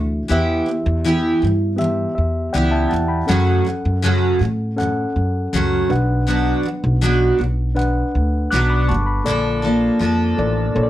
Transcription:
0.00 0.23 D2 medium
0.00 0.22 D3 soft
0.00 0.23 E3 soft
0.00 0.32 D4 medium
0.00 0.32 F#4 medium
0.00 0.31 E5 medium
0.28 0.61 E2 medium
0.28 0.65 E3 medium
0.28 1.35 B3 medium
0.28 0.67 B3 medium
0.28 0.67 E4 medium
0.28 0.67 G4 medium
0.28 1.36 G4 medium
0.28 1.36 E5 medium
0.66 0.96 E3 soft
0.66 0.98 B3 soft
0.86 1.32 E2 medium
1.04 1.41 E3 medium
1.04 1.42 B3 medium
1.04 1.42 E4 medium
1.04 1.43 G4 medium
1.42 2.04 G2 medium
1.42 1.72 E3 soft
1.42 1.73 B3 soft
1.76 2.09 E3 medium
1.76 2.84 B3 medium
1.76 2.84 G4 medium
1.76 2.14 E5 medium
1.81 2.10 B3 medium
2.15 2.48 E2 medium
2.15 2.51 E5 medium
2.53 2.85 C#2 medium
2.53 2.90 E3 medium
2.53 2.91 B3 medium
2.53 2.92 E4 medium
2.53 2.92 G4 medium
2.53 2.71 D5 soft
2.53 2.71 F#5 medium
2.53 2.71 G5 medium
2.72 2.90 E5 medium
2.72 2.90 G5 medium
2.72 2.88 A5 medium
2.89 3.23 E2 medium
2.89 3.21 E3 soft
2.89 3.08 F#5 soft
2.89 3.08 A5 medium
2.94 3.22 B3 medium
3.08 3.45 G5 soft
3.08 3.45 B5 medium
3.27 3.64 F#2 medium
3.27 3.60 F#2 loud
3.27 3.65 C#3 medium
3.27 3.66 F#3 medium
3.27 3.66 A3 medium
3.27 4.34 C#4 medium
3.27 3.66 C#4 medium
3.27 3.67 F#4 medium
3.27 4.34 A4 medium
3.27 4.35 F#5 medium
3.65 3.95 F#2 soft
3.65 3.96 C#3 soft
3.65 3.97 F#3 soft
3.85 4.31 F#2 medium
4.03 4.38 F#2 medium
4.03 4.40 C#3 medium
4.03 4.41 F#3 medium
4.03 4.41 A3 medium
4.03 4.41 C#4 medium
4.03 4.41 F#4 medium
4.39 4.70 F#2 soft
4.39 5.02 A2 medium
4.39 4.71 C#3 medium
4.39 4.72 F#3 medium
4.76 5.08 F#2 medium
4.76 5.09 C#3 medium
4.76 5.83 C#4 medium
4.76 5.84 A4 medium
4.76 5.84 F#5 medium
4.81 5.09 F#3 medium
5.16 5.46 F#2 medium
5.53 5.83 C#2 medium
5.53 5.90 F#2 medium
5.53 5.89 C#3 medium
5.53 5.91 F#3 medium
5.53 5.91 A3 medium
5.53 5.91 C#4 medium
5.53 5.91 F#4 medium
5.89 6.51 B1 medium
5.89 6.20 B2 medium
5.89 6.22 F#3 soft
5.89 7.09 D4 medium
5.89 7.10 B4 medium
5.89 7.10 F#5 medium
6.26 6.62 B2 medium
6.26 6.65 F#3 medium
6.26 6.65 B3 medium
6.26 6.65 D4 medium
6.26 6.65 F#4 medium
6.63 6.94 B2 soft
6.63 6.95 F#3 medium
6.84 7.30 B1 loud
7.01 7.37 B2 medium
7.01 7.39 F#3 medium
7.01 7.40 B3 medium
7.01 7.40 D4 medium
7.01 7.40 F#4 medium
7.38 8.01 B1 medium
7.38 7.69 B2 soft
7.38 7.70 F#3 soft
7.75 8.07 B2 medium
7.75 8.82 D4 medium
7.75 8.82 B4 medium
7.75 8.83 F#5 medium
7.79 8.08 F#3 medium
8.15 8.45 D2 medium
8.50 8.91 B1 medium
8.50 8.88 B2 medium
8.50 8.89 F#3 medium
8.50 8.90 B3 medium
8.50 8.90 D4 medium
8.50 8.90 F#4 medium
8.50 8.68 D6 medium
8.50 8.69 F#6 medium
8.70 8.88 B5 medium
8.70 8.88 D6 medium
8.88 9.20 G1 medium
8.88 9.19 B2 soft
8.88 9.20 F#3 medium
8.88 9.07 A5 medium
8.88 9.07 C#6 medium
9.06 9.43 B5 soft
9.24 9.88 A#1 medium
9.24 9.64 A#2 medium
9.24 9.64 D3 medium
9.24 9.64 F3 medium
9.24 10.05 A#3 medium
9.24 9.63 A#3 medium
9.24 9.62 D4 medium
9.24 10.05 A4 medium
9.24 9.61 A4 medium
9.24 10.06 D5 medium
9.62 9.98 F3 soft
9.62 9.99 A#3 soft
9.62 10.00 D4 soft
9.62 10.01 A4 soft
9.99 10.32 F2 medium
9.99 10.90 F3 medium
9.99 10.90 A#3 medium
9.99 10.90 D4 medium
9.99 10.90 A4 medium
10.37 10.69 A1 medium
10.37 10.64 A#3 medium
10.37 10.65 A4 medium
10.37 10.65 D5 medium
10.75 10.90 A#1 medium
10.75 10.90 A#3 medium
10.75 10.90 A4 medium
10.75 10.83 C#5 medium
10.83 10.90 D5 medium

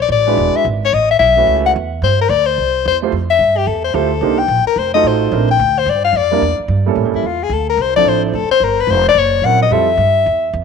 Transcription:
0.02 0.11 D5 medium
0.09 0.36 A1 medium
0.09 0.58 D5 medium
0.27 0.63 G#3 medium
0.27 0.63 D4 medium
0.27 0.63 E4 medium
0.27 0.64 F#4 medium
0.27 0.64 B4 medium
0.37 0.53 E1 medium
0.56 0.66 E5 medium
0.65 0.92 G#1 medium
0.85 0.95 C#5 medium
0.92 1.19 A1 medium
0.92 1.10 D#5 medium
1.11 1.19 E5 medium
1.19 1.46 B1 medium
1.19 1.61 E5 loud
1.36 1.73 A3 medium
1.36 1.73 C#4 medium
1.36 1.73 E4 medium
1.36 1.73 F#4 medium
1.36 1.73 B4 medium
1.47 1.74 C#2 medium
1.66 1.72 F#5 medium
1.76 2.01 E2 medium
2.02 2.29 G2 medium
2.02 2.19 C5 medium
2.21 2.31 A#4 medium
2.29 2.56 D2 medium
2.29 2.48 D5 loud
2.46 2.85 C5 medium
2.58 2.84 C2 medium
2.86 3.11 E2 medium
2.86 2.97 C5 medium
3.02 3.11 A3 medium
3.02 3.12 E4 medium
3.02 3.12 F4 medium
3.02 3.12 G4 medium
3.02 3.12 C5 medium
3.12 3.38 F2 medium
3.30 3.59 E5 medium
3.39 3.66 G2 medium
3.57 3.68 G4 medium
3.67 3.93 E2 medium
3.67 3.84 A4 medium
3.84 3.96 C5 medium
3.94 4.20 D2 medium
3.94 4.09 A3 medium
3.94 4.09 E4 medium
3.94 4.09 F4 medium
3.94 4.10 G4 medium
3.94 4.40 A4 medium
3.94 4.10 C5 medium
4.21 4.48 C2 medium
4.21 4.37 A#3 medium
4.21 4.37 D4 medium
4.21 4.37 D#4 medium
4.21 4.37 G4 medium
4.21 4.38 C5 medium
4.39 4.66 G5 loud
4.48 4.64 A#1 medium
4.65 4.80 A#4 medium
4.65 muted upright bass stroke soft
4.76 5.03 F1 medium
4.76 4.94 C5 medium
4.94 5.30 A3 medium
4.94 5.30 D#4 medium
4.94 5.30 F4 medium
4.94 5.31 F#4 medium
4.94 5.31 A4 medium
4.94 5.09 D#5 medium
5.03 5.31 A1 medium
5.08 5.50 C5 medium
5.32 5.58 A#1 medium
5.32 5.47 A3 medium
5.32 5.47 C4 medium
5.32 5.47 D4 medium
5.32 5.47 E4 medium
5.32 5.48 A#4 medium
5.51 5.80 G5 medium
5.59 5.85 D2 loud
5.79 5.91 C5 medium
5.86 6.12 G2 medium
5.86 6.04 D5 medium
6.04 6.18 F5 medium
6.13 6.40 F2 medium
6.13 6.60 D5 medium
6.31 6.41 G3 medium
6.31 6.41 A#3 medium
6.31 6.41 D4 medium
6.31 6.41 E4 medium
6.31 6.42 A#4 medium
6.42 6.57 E2 medium
6.59 muted upright bass stroke soft
6.68 6.95 G2 medium
6.86 7.22 G3 medium
6.86 7.22 A#3 medium
6.86 7.22 C#4 medium
6.86 7.23 E4 medium
6.86 7.23 A4 medium
6.95 7.05 A2 medium
7.05 7.13 G2 medium
7.13 7.22 E2 medium
7.13 7.28 E4 medium
7.23 7.49 E2 medium
7.27 7.45 F4 medium
7.43 7.54 G#4 medium
7.49 7.77 D2 medium
7.49 7.69 A4 medium
7.69 7.83 A#4 medium
7.77 8.04 C2 medium
7.82 7.95 C5 medium
7.96 8.32 F3 medium
7.96 8.32 C4 medium
7.96 8.32 D4 medium
7.96 8.32 E4 medium
7.96 8.33 A4 medium
7.96 8.10 D5 loud
8.05 8.32 A1 medium
8.05 8.24 C5 medium
8.25 8.36 E4 soft
8.33 8.49 F1 medium
8.33 8.51 A4 medium
8.49 8.65 C5 loud
8.49 muted upright bass stroke soft
8.60 8.86 G1 medium
8.60 8.82 A#4 medium
8.80 8.92 B4 loud
8.87 9.14 F1 medium
8.87 9.06 C5 medium
9.09 9.20 D5 loud
9.15 9.41 F#1 medium
9.15 9.47 C#5 medium
9.42 9.69 A#1 medium
9.42 9.59 F#3 medium
9.42 9.59 C4 medium
9.42 9.59 C#4 medium
9.42 9.60 E4 medium
9.42 9.61 F#5 medium
9.46 9.60 A#4 medium
9.62 9.74 D#5 medium
9.70 9.97 F2 medium
9.70 9.86 G3 medium
9.70 9.86 C4 medium
9.70 9.86 E4 medium
9.70 9.87 F4 medium
9.70 9.87 A4 medium
9.70 10.54 E5 medium
9.97 10.24 G2 medium
10.26 10.53 E2 medium
10.53 10.64 F2 loud

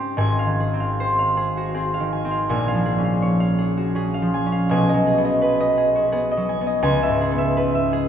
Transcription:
0.00 0.17 G#2 medium
0.00 0.72 C4 medium
0.00 0.23 G4 medium
0.00 0.59 G#4 medium
0.00 0.99 C5 medium
0.00 2.31 D#5 medium
0.00 0.22 G5 medium
0.17 2.50 G#1 medium
0.17 2.51 G#2 medium
0.17 2.11 G#5 loud
0.39 0.79 F5 medium
0.46 1.99 D#3 medium
0.60 1.36 G#4 medium
0.74 1.73 C4 medium
0.80 1.18 F5 medium
1.00 2.52 C5 medium
1.19 1.93 F5 medium
1.37 1.73 G#4 medium
1.57 1.88 F#4 medium
1.74 2.23 C4 medium
1.74 2.84 G#4 medium
1.94 2.30 F5 medium
2.00 2.52 D#3 medium
2.13 2.49 G#5 medium
2.25 2.52 C4 medium
2.31 2.67 F5 medium
2.49 4.74 A#1 medium
2.49 4.74 A#2 medium
2.49 4.33 G#5 loud
2.68 3.03 F5 medium
2.74 4.21 F3 medium
2.86 3.57 G#4 medium
2.98 3.94 C#4 medium
3.04 3.39 F5 medium
3.22 4.73 C#5 medium
3.40 4.13 F5 medium
3.58 3.94 G#4 medium
3.77 4.09 F#4 medium
3.95 4.45 C#4 medium
3.95 5.06 G#4 medium
4.14 4.51 F5 medium
4.22 4.74 F3 medium
4.34 4.70 G#5 medium
4.46 4.74 C#4 medium
4.52 4.73 F5 medium
4.69 6.87 B1 medium
4.69 6.88 B2 loud
4.69 6.48 G#5 loud
4.89 5.24 D#5 medium
4.94 6.36 F#3 medium
5.07 5.76 G#4 medium
5.18 6.11 B3 medium
5.25 5.59 D#5 medium
5.42 7.56 B4 medium
5.60 6.30 D#5 medium
5.78 6.11 G#4 medium
5.96 6.26 F#4 medium
6.12 6.60 B3 medium
6.12 7.20 G#4 medium
6.32 6.66 D#5 medium
6.37 6.87 F#3 medium
6.49 6.82 G#5 medium
6.61 7.31 B3 medium
6.67 6.87 D#5 medium
6.82 8.09 C#2 loud
6.82 8.09 G#5 loud
7.03 7.37 E5 medium
7.09 8.09 G#2 medium
7.21 7.92 G#4 medium
7.32 8.09 B3 medium
7.38 7.74 E5 medium
7.57 8.09 B4 medium
7.75 8.09 E5 medium
7.93 8.09 G#4 medium

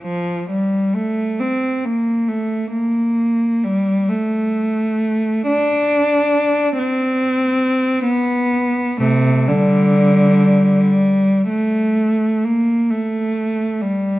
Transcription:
0.03 0.46 F3 soft
0.50 0.96 G3 soft
0.95 1.41 A3 soft
1.40 1.85 C4 soft
1.85 2.30 A#3 soft
2.29 2.75 A3 soft
2.72 3.61 A#3 soft
3.64 4.08 G3 soft
4.09 5.50 A3 soft
5.48 6.74 D4 medium
6.79 8.06 C4 soft
8.05 8.97 B3 medium
8.99 9.45 C3 medium
8.99 9.49 A3 soft
9.48 10.84 D3 soft
9.48 10.82 G3 medium
10.83 11.48 G3 soft
11.49 12.42 A3 soft
12.45 12.92 A#3 soft
12.90 13.81 A3 soft
13.82 14.19 G3 soft

